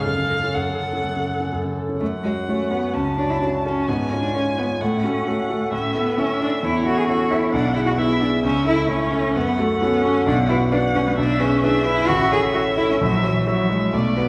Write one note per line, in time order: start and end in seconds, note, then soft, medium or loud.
0.03 0.54 F#2 soft
0.03 1.73 A4 soft
0.03 0.55 F5 medium
0.18 0.38 C#3 soft
0.30 0.50 A4 soft
0.43 0.62 C#4 soft
0.54 1.03 F#2 soft
0.54 1.52 F#5 soft
0.69 0.87 C#3 soft
0.81 0.99 A4 soft
0.93 1.12 C#4 soft
1.04 1.51 F#2 soft
1.16 1.36 C#3 soft
1.29 1.48 A4 soft
1.40 1.60 C#4 soft
1.53 1.99 F#2 soft
1.65 1.84 C#3 soft
1.77 1.96 A4 soft
1.89 2.01 C#4 soft
2.00 2.24 F#2 soft
2.00 2.08 A3 medium
2.00 2.96 F#5 soft
2.23 2.31 G#3 medium
2.23 2.46 F#4 soft
2.23 2.46 C#5 soft
2.47 2.72 A3 medium
2.47 2.69 C#4 soft
2.47 2.69 F#4 soft
2.47 2.70 C#5 soft
2.70 2.96 B3 medium
2.70 2.92 F#4 soft
2.70 2.92 C#5 soft
2.94 3.17 C#2 soft
2.94 3.17 C#4 medium
2.94 3.89 A5 soft
3.18 3.32 D4 medium
3.18 3.39 F#4 soft
3.18 3.39 C#5 soft
3.30 3.40 E4 medium
3.41 3.62 C#4 soft
3.41 3.49 D4 soft
3.41 3.63 F#4 soft
3.41 3.63 C#5 soft
3.65 3.90 C#4 medium
3.65 3.86 F#4 soft
3.65 3.86 C#5 soft
3.87 4.10 G#2 soft
3.87 4.12 B3 medium
3.87 4.82 G#5 soft
4.10 4.21 C#4 medium
4.10 4.32 F4 soft
4.10 4.32 C#5 soft
4.22 4.33 D4 soft
4.34 4.42 C#4 medium
4.34 4.55 C#4 soft
4.34 4.55 F4 soft
4.34 4.56 C#5 soft
4.58 4.66 B3 medium
4.58 4.79 F4 soft
4.58 4.79 C#5 soft
4.81 5.03 A2 soft
4.81 5.05 A3 medium
4.81 5.72 F#5 soft
5.03 5.29 C#4 medium
5.03 5.25 F#4 soft
5.03 5.25 A4 soft
5.27 5.74 A3 medium
5.27 5.47 C#4 soft
5.27 5.48 F#4 soft
5.27 5.48 A4 soft
5.50 5.70 F#4 soft
5.50 5.70 A4 soft
5.71 5.94 A2 soft
5.71 5.94 C#4 medium
5.71 6.17 E5 soft
5.94 6.20 B3 medium
5.94 6.15 E4 soft
5.94 6.16 A4 soft
6.18 6.38 C#4 soft
6.18 6.41 C#4 medium
6.18 6.38 E4 soft
6.18 6.39 A4 soft
6.18 6.66 E5 soft
6.40 6.50 D4 medium
6.40 6.61 E4 soft
6.40 6.61 A4 soft
6.63 6.85 E2 soft
6.63 6.85 E4 medium
6.63 7.08 C#5 soft
6.85 7.05 E4 soft
6.85 6.99 F#4 medium
6.85 7.06 A4 soft
6.98 7.07 G#4 medium
7.08 7.28 C#4 soft
7.08 7.28 E4 soft
7.08 7.32 F#4 medium
7.08 7.29 A4 soft
7.08 7.52 C#5 soft
7.30 7.51 E4 soft
7.30 7.52 E4 medium
7.30 7.51 A4 soft
7.53 7.75 B1 medium
7.53 7.75 D4 medium
7.53 7.99 F#5 soft
7.75 7.95 E4 soft
7.75 7.80 E4 medium
7.75 7.96 G#4 soft
7.86 7.91 F#4 medium
7.98 8.18 B3 soft
7.98 8.20 E4 medium
7.98 8.19 E4 soft
7.98 8.19 G#4 soft
7.98 8.43 E5 medium
8.21 8.29 D4 medium
8.21 8.42 E4 soft
8.21 8.42 G#4 soft
8.43 8.66 C#2 soft
8.43 8.67 C#4 medium
8.43 8.89 E5 soft
8.66 8.87 E4 soft
8.66 8.90 E4 medium
8.66 8.87 A4 soft
8.89 9.10 A3 soft
8.89 9.37 C#4 medium
8.89 9.10 E4 soft
8.89 9.10 A4 soft
8.89 9.35 C#5 soft
9.12 9.33 E4 soft
9.12 9.33 A4 soft
9.36 9.58 F#2 medium
9.36 9.60 B3 medium
9.36 10.22 F#5 medium
9.58 9.83 A3 medium
9.58 9.79 F#4 soft
9.58 9.79 A4 soft
9.81 10.03 B3 medium
9.81 10.02 C#4 soft
9.81 10.02 F#4 soft
9.81 10.02 A4 soft
10.03 10.26 C#4 medium
10.03 10.25 F#4 soft
10.03 10.25 A4 soft
10.27 10.49 B1 medium
10.27 10.35 D4 medium
10.27 10.71 F#5 soft
10.49 10.57 E4 medium
10.49 10.70 F#4 soft
10.49 10.71 B4 soft
10.72 10.92 D4 soft
10.72 10.80 D4 medium
10.72 10.93 F#4 soft
10.72 10.93 B4 soft
10.72 11.17 F#5 medium
10.95 11.00 C#4 medium
10.95 11.16 F#4 soft
10.95 11.16 B4 soft
11.07 11.12 B3 medium
11.17 11.40 B1 medium
11.17 11.41 D4 medium
11.17 11.62 E5 medium
11.40 11.65 C#4 medium
11.40 11.61 G#4 soft
11.40 11.61 B4 soft
11.63 11.86 D4 medium
11.63 11.83 E4 soft
11.63 11.84 G#4 soft
11.63 11.84 B4 soft
11.63 12.08 E5 medium
11.86 12.10 E4 medium
11.86 12.06 G#4 soft
11.86 12.07 B4 soft
12.08 12.31 A1 medium
12.08 12.31 F#4 medium
12.08 12.99 E5 soft
12.32 12.40 G#4 medium
12.32 12.52 A4 soft
12.32 12.52 C#5 soft
12.54 12.75 E4 soft
12.54 12.62 F#4 medium
12.54 12.75 A4 soft
12.54 12.75 C#5 soft
12.77 12.89 E4 medium
12.77 12.98 A4 soft
12.77 12.98 C#5 soft
12.90 12.95 C#4 medium
13.01 13.23 A#1 medium
13.01 13.25 F#3 medium
13.01 13.43 E5 medium
13.23 13.49 E3 medium
13.23 13.44 F#4 soft
13.23 13.44 C#5 soft
13.46 13.71 F#3 medium
13.46 13.67 E4 soft
13.46 13.67 F#4 soft
13.46 13.68 C#5 soft
13.46 13.95 E5 soft
13.69 13.93 G#3 medium
13.69 13.90 F#4 soft
13.69 13.91 C#5 soft
13.93 14.16 B1 medium
13.93 14.16 A3 medium
13.93 14.29 D5 soft
14.17 14.26 B3 medium
14.17 14.29 F#4 soft
14.17 14.29 B4 soft